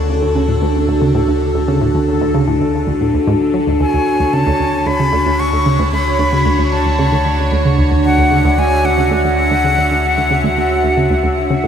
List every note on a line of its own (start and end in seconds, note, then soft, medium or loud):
0.00 3.78 D2 medium
0.00 11.67 D3 medium
0.00 11.67 D4 medium
0.00 11.67 F#4 medium
0.00 3.79 A4 medium
0.00 3.83 A4 medium
0.22 0.26 D2 medium
0.35 0.46 C#3 medium
0.48 0.56 A2 medium
0.62 0.66 D2 medium
0.88 0.93 D2 medium
1.02 1.12 C#3 medium
1.15 1.22 A2 medium
1.28 1.32 D2 medium
1.55 1.59 D2 medium
1.68 1.79 C#3 medium
1.81 1.88 A2 medium
1.95 1.99 D2 medium
2.21 2.25 D2 medium
2.34 2.45 C#3 medium
2.48 2.55 A2 medium
2.61 2.65 D2 medium
2.87 2.92 D2 medium
3.01 3.11 A2 medium
3.14 3.18 D2 medium
3.27 3.34 G#2 loud
3.54 3.61 F#3 medium
3.67 3.78 D2 medium
3.80 11.67 D2 medium
3.80 3.85 D2 medium
3.80 8.08 C#5 medium
3.80 11.67 C#5 medium
3.80 4.35 G#5 medium
3.94 3.98 D2 medium
4.20 4.24 D2 medium
4.33 4.44 C#3 medium
4.33 4.88 A5 medium
4.47 4.51 D2 loud
4.60 4.64 D2 medium
4.86 4.91 D2 medium
4.86 5.41 B5 loud
5.00 5.10 C#3 medium
5.13 5.17 D2 loud
5.26 5.31 D2 medium
5.40 5.92 C#6 loud
5.53 5.57 D2 medium
5.66 5.77 C#3 medium
5.79 5.84 D2 loud
5.93 5.97 D2 medium
5.93 6.74 B5 loud
6.19 6.24 D2 medium
6.33 6.43 C#3 medium
6.46 6.50 D2 loud
6.59 6.63 D2 medium
6.72 7.52 A5 medium
6.86 6.90 D2 medium
6.99 7.10 C#3 medium
7.12 7.16 D2 loud
7.25 7.30 D2 medium
7.52 7.56 D2 medium
7.65 7.76 C#3 medium
7.78 7.83 D2 loud
7.92 7.96 D2 medium
8.05 11.67 E5 medium
8.05 8.60 F#5 loud
8.18 8.23 D2 medium
8.31 8.42 C#3 medium
8.44 8.49 D2 loud
8.58 8.62 D2 medium
8.58 8.87 G#5 loud
8.85 8.89 D2 medium
8.85 11.67 F#5 loud
8.98 9.08 C#3 medium
9.11 9.15 D2 loud
9.24 9.29 D2 medium
9.51 9.55 D2 medium
9.64 9.75 C#3 medium
9.78 9.82 D2 loud
9.91 9.95 D2 medium
10.18 10.22 D2 medium
10.31 10.41 C#3 medium
10.44 10.48 D2 loud
10.57 10.62 D2 medium
10.84 10.88 D2 medium
10.97 11.08 C#3 medium
11.10 11.15 D2 loud
11.24 11.28 D2 medium
11.50 11.55 C#3 medium
11.64 11.67 A2 medium